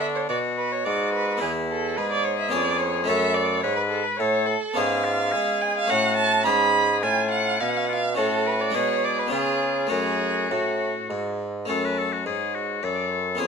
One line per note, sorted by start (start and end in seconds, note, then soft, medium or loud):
0.00 0.26 D3 soft
0.00 0.28 D3 medium
0.00 1.36 B3 soft
0.00 0.28 D4 medium
0.00 1.37 D4 soft
0.00 1.37 F#4 soft
0.00 0.06 E5 medium
0.15 0.21 C#5 medium
0.29 0.85 B2 medium
0.29 0.82 B2 soft
0.29 0.85 F#4 medium
0.29 0.37 D5 medium
0.58 0.73 B4 medium
0.72 0.86 C#5 medium
0.85 1.41 G#2 medium
0.85 1.38 G#2 medium
0.85 1.42 F#4 medium
0.85 1.13 D5 medium
1.13 1.41 B4 medium
1.37 2.47 B3 soft
1.37 2.48 E4 soft
1.37 1.98 E4 medium
1.41 1.99 E2 medium
1.41 1.94 E2 medium
1.41 1.50 G#4 medium
1.70 1.99 A4 medium
1.97 2.53 G#2 medium
1.97 2.50 G#2 medium
1.97 3.08 G#4 medium
1.97 2.11 B4 medium
2.12 2.26 D5 medium
2.24 2.39 C#5 medium
2.39 2.52 E5 medium
2.49 3.04 B3 medium
2.49 3.04 C#4 medium
2.49 3.06 G#4 medium
2.49 2.81 D5 loud
2.53 3.04 F2 medium
2.53 3.08 F2 medium
2.79 3.06 C#5 medium
3.04 3.60 A3 soft
3.04 3.60 C#4 medium
3.04 4.73 A4 medium
3.04 3.36 E5 loud
3.08 3.59 F#2 medium
3.08 3.63 F#2 medium
3.08 3.63 A4 medium
3.34 3.63 D5 medium
3.61 4.03 G#2 medium
3.61 4.16 G#2 medium
3.61 4.21 B4 medium
3.61 3.75 C#5 loud
3.76 3.82 B4 medium
3.90 4.05 A4 medium
4.04 4.18 B4 medium
4.17 4.56 A2 medium
4.17 4.54 A2 medium
4.17 4.57 A4 medium
4.17 4.48 C#5 medium
4.46 4.77 A4 loud
4.73 5.35 G#2 medium
4.73 5.85 B3 medium
4.73 5.86 C#4 medium
4.73 5.86 G#4 medium
4.73 5.06 G#4 medium
4.73 5.63 F5 loud
4.78 5.30 G#2 medium
5.05 5.34 F4 medium
5.32 5.89 G#3 medium
5.32 5.87 G#3 medium
5.32 5.92 G#4 medium
5.62 5.76 G#5 medium
5.78 5.92 F5 loud
5.87 6.45 A2 medium
5.87 6.43 A3 medium
5.87 6.42 C#4 medium
5.87 6.44 F#4 medium
5.87 6.45 F#4 medium
5.87 6.16 F#5 loud
5.92 6.43 A2 medium
6.16 6.45 A5 loud
6.43 7.05 G#2 medium
6.43 6.99 G#2 medium
6.43 8.11 C#4 medium
6.43 8.12 G#4 medium
6.43 7.05 G#4 medium
6.43 7.02 B5 loud
7.03 7.56 A2 medium
7.03 7.60 A2 medium
7.03 7.62 F4 medium
7.03 7.30 G#5 loud
7.31 7.62 F#5 loud
7.60 8.13 B2 medium
7.60 8.19 B2 medium
7.60 7.88 C#4 medium
7.60 7.70 F5 medium
7.69 7.78 F#5 medium
7.77 7.87 F5 medium
7.85 8.01 F4 medium
7.85 7.95 F#5 medium
7.93 8.18 F5 loud
8.15 8.73 A2 medium
8.15 8.70 A2 medium
8.15 8.71 C#4 medium
8.15 8.72 F#4 medium
8.15 8.73 F#4 medium
8.15 8.48 A4 medium
8.46 8.62 B4 medium
8.60 8.77 D5 medium
8.70 9.30 B2 medium
8.70 9.28 G#3 medium
8.70 9.28 D4 medium
8.70 9.30 F#4 medium
8.70 9.30 G#4 medium
8.75 9.28 B2 medium
8.75 9.06 C#5 loud
9.04 9.21 D5 medium
9.19 9.32 B4 medium
9.27 9.87 B3 medium
9.27 9.87 C#4 medium
9.27 9.88 F4 soft
9.31 9.87 C#3 medium
9.31 9.90 C#3 medium
9.31 9.92 F4 medium
9.31 9.90 G#4 medium
9.87 10.49 F#2 medium
9.87 11.04 A3 medium
9.87 11.05 C#4 soft
9.87 11.64 F#4 soft
9.87 11.39 F#4 medium
9.91 10.47 F#2 medium
9.91 10.53 G#4 loud
10.50 10.92 A2 medium
10.50 11.06 A2 medium
10.50 11.11 F#4 medium
11.09 11.67 G#2 medium
11.09 11.65 G#2 medium
11.65 12.26 F#2 medium
11.65 12.23 A3 soft
11.65 12.23 C#4 soft
11.65 13.36 F#4 soft
11.65 11.86 A4 medium
11.65 12.22 A5 medium
11.70 12.23 F#2 soft
11.84 11.99 B4 medium
11.98 12.14 A4 medium
12.13 12.26 F#4 medium
12.25 12.82 G#2 soft
12.25 12.79 G#2 soft
12.25 12.56 G#4 medium
12.25 12.82 C#5 medium
12.55 12.86 F#4 medium
12.83 13.39 F#2 medium
12.83 13.36 F#2 soft
12.83 13.41 A4 medium
12.83 13.12 D5 medium
13.11 13.39 C#5 medium
13.35 13.47 B3 soft
13.35 13.47 C#4 soft
13.35 13.47 G#4 soft
13.39 13.47 F2 soft
13.39 13.47 F2 medium
13.39 13.47 G#4 medium
13.39 13.47 F5 medium